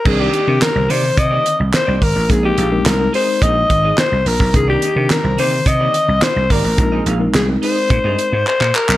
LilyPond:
<<
  \new Staff \with { instrumentName = "Alto saxophone" } { \time 4/4 \key c \minor \tempo 4 = 107 aes'16 g'8. bes'8 c''8 ees''4 c''16. c''32 bes'8 | aes'16 g'8. bes'8 c''8 ees''4 c''8 bes'8 | aes'16 g'8. bes'8 c''8 ees''4 c''8 bes'8~ | bes'8 r8 aes'8 c''4. c''8 bes'8 | }
  \new Staff \with { instrumentName = "Clean electric guitar" } { \time 4/4 \key c \minor r16 <bes ees' g' d''>16 <bes ees' g' ees''>16 r8. <bes ees' g' d''>16 r8 <bes ees' g' d''>16 r8. <bes ees' g' d''>16 r8 | r16 <ees' aes' c'' ees''>16 <ees' aes' c'' f''>16 r8. <ees' aes' c'' ees''>16 r16 <ees' aes' c'' ees''>16 r8 <ees' aes' c'' ees''>16 r4 | r16 <bes ees' g' d''>16 <bes ees' g' ees''>16 r8. <bes ees' g' d''>16 r8 <bes ees' g' d''>16 r4 <bes ees' g' d''>16 r16 | r16 <ees' aes' c'' ees''>16 <ees' aes' c'' f''>16 r8. <ees' aes' c'' ees''>16 r8 <ees' aes' c'' ees''>16 r4. | }
  \new Staff \with { instrumentName = "Tine electric piano" } { \time 4/4 \key c \minor <ees c' d' bes'>8 r16 <ees c' d' bes'>8 <d ees c' c''>4. r4 r16 | <aes c' ees' bes'>8 r16 <aes c' ees' bes'>8 <aes c' ees' bes'>4. r4 r16 | <ees c' d' bes'>8 r16 <ees c' d' bes'>8 <d ees c' c''>4. r4 r16 | <aes c' ees' bes'>8 r16 <aes c' ees' bes'>8 <aes c' ees' bes'>4. r4 r16 | }
  \new Staff \with { instrumentName = "Slap bass" } { \clef bass \time 4/4 \key c \minor c,8 r16 c16 r16 c,16 c8 c8 r16 c,16 r16 c,16 aes,,16 a,,16 | bes,,8 bes,,8 c,8 r8 bes,,8 aes,,8 r16 c,16 bes,,16 b,,16 | c,8 r16 c16 r16 c,16 c8 c8 r16 c,16 r16 c,16 aes,,16 a,,16 | bes,,8 bes,,8 c,8 r8 bes,16 g,16 r16 aes,16 r16 bes,16 r16 b,,16 | }
  \new DrumStaff \with { instrumentName = "Drums" } \drummode { \time 4/4 <cymc bd>8 hh8 <hc hh sn>8 hho8 <hh bd>8 hh8 <hc hh sn>8 <hho bd>8 | <hh bd>8 hh8 <hc hh sn>8 hho8 <hh bd>8 <hh bd>8 <hc hh sn>8 hho16 bd16 | <hh bd>8 hh8 <hc hh sn>8 hho8 <hh bd>8 hh8 <hc hh sn>8 <hho bd>8 | <hh bd>8 hh8 <hc hh sn>8 hho8 <hh bd>8 hh8 hc16 hc16 hc16 hc16 | }
>>